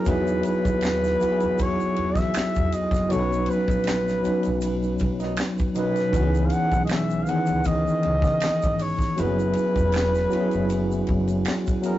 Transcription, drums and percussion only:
0.05 kick, ride, shaker
0.27 shaker
0.43 ride, shaker
0.65 kick, shaker
0.81 finger snap, ride, shaker
0.85 finger snap, snare
1.04 snare, shaker
1.21 ride, shaker
1.40 ride, shaker
1.58 kick, ride, shaker
1.80 shaker
1.96 ride
2.15 kick, ride, shaker
2.20 snare
2.34 finger snap, snare, ride, shaker
2.38 finger snap
2.55 kick, shaker
2.72 ride, shaker
2.91 kick, snare, ride, shaker
3.10 ride, shaker
3.33 shaker
3.46 ride
3.50 shaker
3.68 kick, ride, shaker
3.84 finger snap, ride, shaker
3.88 finger snap, snare
4.08 snare, shaker
4.24 ride, shaker
4.43 ride, shaker
4.61 ride, shaker
4.83 shaker
4.99 kick, ride, shaker
5.20 snare, ride, shaker
5.36 finger snap, snare, ride, shaker
5.41 finger snap
5.58 kick, shaker
5.75 ride, shaker
5.96 snare, ride, shaker
6.13 kick, ride, shaker
6.34 shaker
6.50 ride, shaker
6.71 kick, ride, shaker
6.87 finger snap, ride, shaker
6.91 finger snap, snare
7.10 shaker
7.26 ride, shaker
7.46 ride, shaker
7.64 kick, ride, shaker
7.88 shaker
8.03 ride
8.22 kick, snare, shaker
8.40 finger snap, snare, ride, shaker
8.45 finger snap
8.62 kick, shaker
8.79 open hi-hat, ride, shaker
8.99 kick, snare, shaker
9.18 hi-hat pedal, ride, shaker
9.39 shaker
9.53 ride, shaker
9.75 kick, ride, shaker
9.92 finger snap, ride, shaker
9.96 finger snap, snare
10.15 snare, shaker
10.31 ride, shaker
10.51 ride, shaker
10.70 ride, shaker
10.92 shaker
11.07 kick, ride
11.28 ride, shaker
11.45 finger snap, snare, ride, shaker
11.49 finger snap
11.67 kick, shaker
11.83 ride, shaker

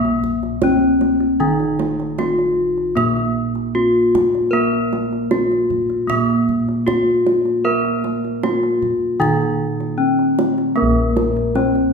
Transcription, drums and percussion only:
0.05 kendang slap
0.24 kendang low
0.43 kendang slap
0.62 kendang high, kendang low
1.01 kendang high
1.20 kendang slap
1.60 kendang slap
1.79 kendang high
2.00 kendang slap
2.18 kendang high
2.39 kendang slap
2.77 kendang slap
2.97 kendang low
3.17 kendang slap
3.55 kendang slap
4.15 kendang high, kendang low
4.35 kendang slap
4.73 kendang slap
4.93 kendang high
5.13 kendang slap
5.31 kendang high
5.52 kendang slap
5.70 kendang low
5.90 kendang slap
6.10 kendang low
6.30 kendang slap
6.49 kendang low
6.68 kendang slap
6.88 kendang high, kendang low
7.27 kendang high
7.45 kendang slap
7.85 kendang slap
8.04 kendang high
8.25 kendang slap
8.43 kendang high
8.63 kendang slap
8.82 kendang low
9.21 kendang low
9.42 kendang slap
9.80 kendang slap
10.19 kendang slap
10.39 kendang high
10.58 kendang slap
11.17 kendang high
11.37 kendang slap
11.55 kendang high
11.75 kendang slap

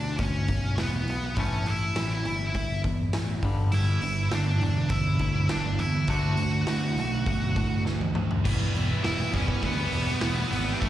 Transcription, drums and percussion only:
0.18 kick, open hi-hat
0.48 kick, open hi-hat
0.78 snare, open hi-hat
1.08 open hi-hat
1.36 kick, open hi-hat
1.66 open hi-hat
1.96 snare, open hi-hat
2.25 open hi-hat
2.55 kick, open hi-hat
2.84 kick, open hi-hat
3.13 snare, open hi-hat
3.43 kick, open hi-hat
3.72 open hi-hat
4.02 open hi-hat
4.31 snare, open hi-hat
4.61 open hi-hat
4.89 kick, open hi-hat
5.19 kick, open hi-hat
5.49 snare, open hi-hat
5.79 open hi-hat
6.07 kick, open hi-hat
6.37 open hi-hat
6.67 snare, open hi-hat
6.97 open hi-hat
7.26 kick, open hi-hat
7.56 kick, open hi-hat
7.86 snare
8.01 high tom
8.15 mid tom
8.31 floor tom
8.45 kick, crash
8.75 open hi-hat
9.04 snare, open hi-hat
9.33 kick, snare, open hi-hat
9.48 kick
9.62 kick, open hi-hat
9.92 open hi-hat
10.21 snare, open hi-hat
10.52 open hi-hat
10.82 kick, open hi-hat

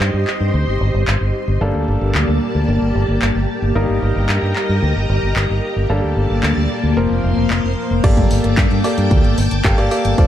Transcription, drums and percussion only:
0.00 clap
0.27 clap
1.08 clap
2.15 clap
3.22 clap
4.29 clap
4.56 clap
5.36 clap
6.43 clap
7.50 clap
8.04 kick, closed hi-hat, crash
8.17 kick, closed hi-hat, high tom
8.31 open hi-hat
8.44 closed hi-hat
8.57 kick, clap, closed hi-hat
8.71 closed hi-hat
8.84 open hi-hat
8.98 closed hi-hat
9.11 kick, closed hi-hat
9.24 closed hi-hat
9.38 open hi-hat
9.51 closed hi-hat
9.65 kick, clap, closed hi-hat
9.78 closed hi-hat
9.91 open hi-hat
10.05 closed hi-hat
10.18 kick, closed hi-hat

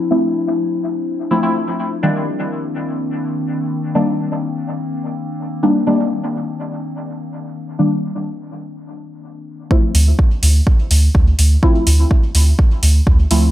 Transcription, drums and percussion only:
9.71 kick
9.95 open hi-hat
10.19 kick
10.43 open hi-hat
10.67 kick
10.91 open hi-hat
11.15 kick
11.39 open hi-hat
11.63 kick
11.87 open hi-hat
12.11 kick
12.35 open hi-hat
12.59 kick
12.83 open hi-hat
13.07 kick
13.31 open hi-hat

